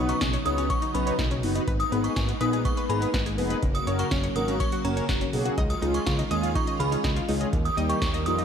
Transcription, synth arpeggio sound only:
0, 0, Header, 1, 2, 480
1, 0, Start_track
1, 0, Tempo, 487805
1, 1649, Time_signature, 4, 2, 24, 8
1, 8312, End_track
2, 0, Start_track
2, 0, Title_t, "Synth arpeggio sound"
2, 0, Program_c, 0, 84
2, 90, Note_on_c, 0, 63, 78
2, 186, Note_off_c, 0, 63, 0
2, 209, Note_on_c, 0, 61, 90
2, 305, Note_off_c, 0, 61, 0
2, 331, Note_on_c, 0, 73, 80
2, 426, Note_off_c, 0, 73, 0
2, 570, Note_on_c, 0, 61, 77
2, 666, Note_off_c, 0, 61, 0
2, 688, Note_on_c, 0, 73, 100
2, 784, Note_off_c, 0, 73, 0
2, 809, Note_on_c, 0, 63, 77
2, 905, Note_off_c, 0, 63, 0
2, 929, Note_on_c, 0, 61, 81
2, 1025, Note_off_c, 0, 61, 0
2, 1049, Note_on_c, 0, 73, 82
2, 1145, Note_off_c, 0, 73, 0
2, 1169, Note_on_c, 0, 63, 90
2, 1265, Note_off_c, 0, 63, 0
2, 1291, Note_on_c, 0, 61, 75
2, 1386, Note_off_c, 0, 61, 0
2, 1529, Note_on_c, 0, 63, 80
2, 1625, Note_off_c, 0, 63, 0
2, 1649, Note_on_c, 0, 71, 104
2, 1745, Note_off_c, 0, 71, 0
2, 1889, Note_on_c, 0, 59, 82
2, 1985, Note_off_c, 0, 59, 0
2, 2129, Note_on_c, 0, 68, 90
2, 2225, Note_off_c, 0, 68, 0
2, 2250, Note_on_c, 0, 59, 76
2, 2345, Note_off_c, 0, 59, 0
2, 2369, Note_on_c, 0, 71, 90
2, 2465, Note_off_c, 0, 71, 0
2, 2489, Note_on_c, 0, 68, 79
2, 2585, Note_off_c, 0, 68, 0
2, 2609, Note_on_c, 0, 59, 96
2, 2705, Note_off_c, 0, 59, 0
2, 2730, Note_on_c, 0, 71, 86
2, 2825, Note_off_c, 0, 71, 0
2, 2849, Note_on_c, 0, 68, 82
2, 2945, Note_off_c, 0, 68, 0
2, 2970, Note_on_c, 0, 59, 74
2, 3065, Note_off_c, 0, 59, 0
2, 3089, Note_on_c, 0, 71, 93
2, 3185, Note_off_c, 0, 71, 0
2, 3210, Note_on_c, 0, 68, 75
2, 3305, Note_off_c, 0, 68, 0
2, 3329, Note_on_c, 0, 59, 78
2, 3425, Note_off_c, 0, 59, 0
2, 3449, Note_on_c, 0, 71, 82
2, 3545, Note_off_c, 0, 71, 0
2, 3809, Note_on_c, 0, 73, 91
2, 3905, Note_off_c, 0, 73, 0
2, 3929, Note_on_c, 0, 66, 81
2, 4025, Note_off_c, 0, 66, 0
2, 4050, Note_on_c, 0, 61, 90
2, 4145, Note_off_c, 0, 61, 0
2, 4169, Note_on_c, 0, 73, 83
2, 4265, Note_off_c, 0, 73, 0
2, 4409, Note_on_c, 0, 61, 77
2, 4505, Note_off_c, 0, 61, 0
2, 4528, Note_on_c, 0, 73, 103
2, 4625, Note_off_c, 0, 73, 0
2, 4650, Note_on_c, 0, 66, 79
2, 4745, Note_off_c, 0, 66, 0
2, 4769, Note_on_c, 0, 61, 81
2, 4865, Note_off_c, 0, 61, 0
2, 4888, Note_on_c, 0, 73, 84
2, 4984, Note_off_c, 0, 73, 0
2, 5009, Note_on_c, 0, 66, 90
2, 5105, Note_off_c, 0, 66, 0
2, 5129, Note_on_c, 0, 61, 73
2, 5225, Note_off_c, 0, 61, 0
2, 5368, Note_on_c, 0, 66, 80
2, 5464, Note_off_c, 0, 66, 0
2, 5488, Note_on_c, 0, 75, 105
2, 5584, Note_off_c, 0, 75, 0
2, 5727, Note_on_c, 0, 63, 80
2, 5824, Note_off_c, 0, 63, 0
2, 5968, Note_on_c, 0, 65, 93
2, 6064, Note_off_c, 0, 65, 0
2, 6089, Note_on_c, 0, 63, 75
2, 6185, Note_off_c, 0, 63, 0
2, 6207, Note_on_c, 0, 75, 93
2, 6304, Note_off_c, 0, 75, 0
2, 6328, Note_on_c, 0, 65, 78
2, 6424, Note_off_c, 0, 65, 0
2, 6449, Note_on_c, 0, 63, 96
2, 6545, Note_off_c, 0, 63, 0
2, 6569, Note_on_c, 0, 75, 85
2, 6665, Note_off_c, 0, 75, 0
2, 6688, Note_on_c, 0, 65, 82
2, 6784, Note_off_c, 0, 65, 0
2, 6809, Note_on_c, 0, 63, 79
2, 6905, Note_off_c, 0, 63, 0
2, 6928, Note_on_c, 0, 75, 96
2, 7024, Note_off_c, 0, 75, 0
2, 7049, Note_on_c, 0, 65, 77
2, 7145, Note_off_c, 0, 65, 0
2, 7169, Note_on_c, 0, 63, 77
2, 7265, Note_off_c, 0, 63, 0
2, 7288, Note_on_c, 0, 75, 83
2, 7385, Note_off_c, 0, 75, 0
2, 7648, Note_on_c, 0, 75, 90
2, 7744, Note_off_c, 0, 75, 0
2, 7768, Note_on_c, 0, 67, 81
2, 7864, Note_off_c, 0, 67, 0
2, 7888, Note_on_c, 0, 63, 90
2, 7984, Note_off_c, 0, 63, 0
2, 8008, Note_on_c, 0, 75, 82
2, 8105, Note_off_c, 0, 75, 0
2, 8250, Note_on_c, 0, 63, 78
2, 8312, Note_off_c, 0, 63, 0
2, 8312, End_track
0, 0, End_of_file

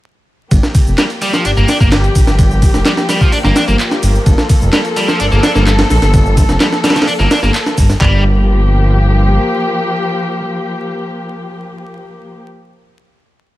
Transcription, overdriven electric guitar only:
0, 0, Header, 1, 2, 480
1, 0, Start_track
1, 0, Key_signature, -2, "minor"
1, 0, Tempo, 468750
1, 524, Time_signature, 4, 2, 24, 8
1, 13899, End_track
2, 0, Start_track
2, 0, Title_t, "Overdriven electric guitar"
2, 0, Program_c, 0, 29
2, 1007, Note_on_c, 0, 55, 94
2, 1054, Note_off_c, 0, 55, 0
2, 1247, Note_on_c, 0, 55, 107
2, 1355, Note_off_c, 0, 55, 0
2, 1369, Note_on_c, 0, 53, 101
2, 1474, Note_off_c, 0, 53, 0
2, 1488, Note_on_c, 0, 62, 95
2, 1534, Note_off_c, 0, 62, 0
2, 1608, Note_on_c, 0, 58, 99
2, 1720, Note_off_c, 0, 58, 0
2, 1727, Note_on_c, 0, 62, 80
2, 1806, Note_off_c, 0, 62, 0
2, 1848, Note_on_c, 0, 58, 75
2, 1925, Note_off_c, 0, 58, 0
2, 2929, Note_on_c, 0, 55, 99
2, 2975, Note_off_c, 0, 55, 0
2, 3167, Note_on_c, 0, 55, 107
2, 3275, Note_off_c, 0, 55, 0
2, 3288, Note_on_c, 0, 53, 100
2, 3393, Note_off_c, 0, 53, 0
2, 3404, Note_on_c, 0, 62, 98
2, 3452, Note_off_c, 0, 62, 0
2, 3526, Note_on_c, 0, 58, 99
2, 3638, Note_off_c, 0, 58, 0
2, 3647, Note_on_c, 0, 62, 75
2, 3726, Note_off_c, 0, 62, 0
2, 3765, Note_on_c, 0, 58, 76
2, 3844, Note_off_c, 0, 58, 0
2, 4847, Note_on_c, 0, 55, 99
2, 4894, Note_off_c, 0, 55, 0
2, 5086, Note_on_c, 0, 55, 116
2, 5195, Note_off_c, 0, 55, 0
2, 5206, Note_on_c, 0, 53, 108
2, 5313, Note_off_c, 0, 53, 0
2, 5324, Note_on_c, 0, 62, 97
2, 5373, Note_off_c, 0, 62, 0
2, 5444, Note_on_c, 0, 58, 99
2, 5558, Note_off_c, 0, 58, 0
2, 5562, Note_on_c, 0, 62, 82
2, 5643, Note_off_c, 0, 62, 0
2, 5683, Note_on_c, 0, 58, 77
2, 5763, Note_off_c, 0, 58, 0
2, 6762, Note_on_c, 0, 55, 105
2, 6812, Note_off_c, 0, 55, 0
2, 7001, Note_on_c, 0, 55, 114
2, 7112, Note_off_c, 0, 55, 0
2, 7124, Note_on_c, 0, 53, 105
2, 7232, Note_off_c, 0, 53, 0
2, 7237, Note_on_c, 0, 62, 100
2, 7289, Note_off_c, 0, 62, 0
2, 7362, Note_on_c, 0, 58, 107
2, 7476, Note_off_c, 0, 58, 0
2, 7484, Note_on_c, 0, 62, 80
2, 7564, Note_off_c, 0, 62, 0
2, 7605, Note_on_c, 0, 58, 76
2, 7684, Note_off_c, 0, 58, 0
2, 8202, Note_on_c, 0, 55, 96
2, 8427, Note_off_c, 0, 55, 0
2, 13899, End_track
0, 0, End_of_file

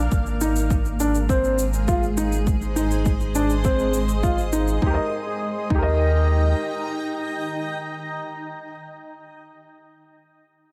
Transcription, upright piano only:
0, 0, Header, 1, 2, 480
1, 0, Start_track
1, 0, Key_signature, -3, "major"
1, 0, Tempo, 588235
1, 93, Time_signature, 4, 2, 24, 8
1, 8748, End_track
2, 0, Start_track
2, 0, Title_t, "Upright piano"
2, 0, Program_c, 0, 0
2, 336, Note_on_c, 0, 63, 65
2, 591, Note_off_c, 0, 63, 0
2, 815, Note_on_c, 0, 62, 61
2, 943, Note_off_c, 0, 62, 0
2, 1055, Note_on_c, 0, 60, 74
2, 1310, Note_off_c, 0, 60, 0
2, 1534, Note_on_c, 0, 65, 67
2, 1661, Note_off_c, 0, 65, 0
2, 1773, Note_on_c, 0, 63, 69
2, 1901, Note_off_c, 0, 63, 0
2, 2252, Note_on_c, 0, 63, 62
2, 2508, Note_off_c, 0, 63, 0
2, 2734, Note_on_c, 0, 62, 61
2, 2862, Note_off_c, 0, 62, 0
2, 2974, Note_on_c, 0, 60, 73
2, 3229, Note_off_c, 0, 60, 0
2, 3453, Note_on_c, 0, 65, 67
2, 3581, Note_off_c, 0, 65, 0
2, 3693, Note_on_c, 0, 63, 61
2, 3821, Note_off_c, 0, 63, 0
2, 3934, Note_on_c, 0, 63, 61
2, 3967, Note_on_c, 0, 67, 61
2, 3999, Note_on_c, 0, 70, 58
2, 4031, Note_on_c, 0, 75, 61
2, 4068, Note_off_c, 0, 63, 0
2, 4085, Note_off_c, 0, 67, 0
2, 4103, Note_off_c, 0, 70, 0
2, 4120, Note_off_c, 0, 75, 0
2, 4654, Note_on_c, 0, 63, 56
2, 4689, Note_on_c, 0, 67, 56
2, 4720, Note_on_c, 0, 70, 59
2, 4753, Note_on_c, 0, 75, 54
2, 7045, Note_off_c, 0, 63, 0
2, 7062, Note_off_c, 0, 67, 0
2, 7078, Note_off_c, 0, 70, 0
2, 7094, Note_off_c, 0, 75, 0
2, 8748, End_track
0, 0, End_of_file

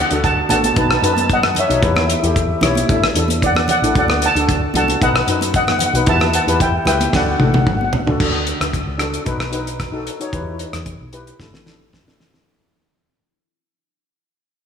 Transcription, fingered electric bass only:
0, 0, Header, 1, 2, 480
1, 0, Start_track
1, 0, Key_signature, 2, "major"
1, 0, Tempo, 531915
1, 1651, Time_signature, 4, 2, 24, 8
1, 13226, End_track
2, 0, Start_track
2, 0, Title_t, "Fingered electric bass"
2, 0, Program_c, 0, 33
2, 98, Note_on_c, 0, 38, 103
2, 369, Note_off_c, 0, 38, 0
2, 448, Note_on_c, 0, 33, 95
2, 633, Note_off_c, 0, 33, 0
2, 691, Note_on_c, 0, 35, 105
2, 875, Note_off_c, 0, 35, 0
2, 920, Note_on_c, 0, 42, 88
2, 1388, Note_off_c, 0, 42, 0
2, 1529, Note_on_c, 0, 35, 93
2, 1619, Note_off_c, 0, 35, 0
2, 1648, Note_on_c, 0, 40, 118
2, 1930, Note_off_c, 0, 40, 0
2, 2015, Note_on_c, 0, 40, 102
2, 2284, Note_off_c, 0, 40, 0
2, 2363, Note_on_c, 0, 35, 106
2, 2548, Note_off_c, 0, 35, 0
2, 2612, Note_on_c, 0, 33, 107
2, 2793, Note_off_c, 0, 33, 0
2, 2838, Note_on_c, 0, 40, 82
2, 3304, Note_off_c, 0, 40, 0
2, 3446, Note_on_c, 0, 33, 91
2, 3534, Note_off_c, 0, 33, 0
2, 3567, Note_on_c, 0, 38, 124
2, 3846, Note_off_c, 0, 38, 0
2, 3926, Note_on_c, 0, 38, 100
2, 4196, Note_off_c, 0, 38, 0
2, 4274, Note_on_c, 0, 36, 97
2, 4460, Note_off_c, 0, 36, 0
2, 4526, Note_on_c, 0, 35, 103
2, 4707, Note_off_c, 0, 35, 0
2, 4754, Note_on_c, 0, 42, 83
2, 5219, Note_off_c, 0, 42, 0
2, 5354, Note_on_c, 0, 35, 95
2, 5444, Note_off_c, 0, 35, 0
2, 5479, Note_on_c, 0, 40, 117
2, 5759, Note_off_c, 0, 40, 0
2, 5836, Note_on_c, 0, 40, 99
2, 6108, Note_off_c, 0, 40, 0
2, 6187, Note_on_c, 0, 37, 104
2, 6373, Note_off_c, 0, 37, 0
2, 6437, Note_on_c, 0, 38, 104
2, 6620, Note_off_c, 0, 38, 0
2, 6670, Note_on_c, 0, 33, 94
2, 7136, Note_off_c, 0, 33, 0
2, 7286, Note_on_c, 0, 38, 89
2, 7370, Note_off_c, 0, 38, 0
2, 7402, Note_on_c, 0, 38, 87
2, 7681, Note_off_c, 0, 38, 0
2, 7764, Note_on_c, 0, 38, 90
2, 7948, Note_off_c, 0, 38, 0
2, 8004, Note_on_c, 0, 37, 71
2, 8273, Note_off_c, 0, 37, 0
2, 8358, Note_on_c, 0, 35, 82
2, 9093, Note_off_c, 0, 35, 0
2, 9320, Note_on_c, 0, 40, 89
2, 9602, Note_off_c, 0, 40, 0
2, 9683, Note_on_c, 0, 40, 85
2, 9869, Note_off_c, 0, 40, 0
2, 9929, Note_on_c, 0, 35, 73
2, 10199, Note_off_c, 0, 35, 0
2, 10284, Note_on_c, 0, 33, 84
2, 11020, Note_off_c, 0, 33, 0
2, 13226, End_track
0, 0, End_of_file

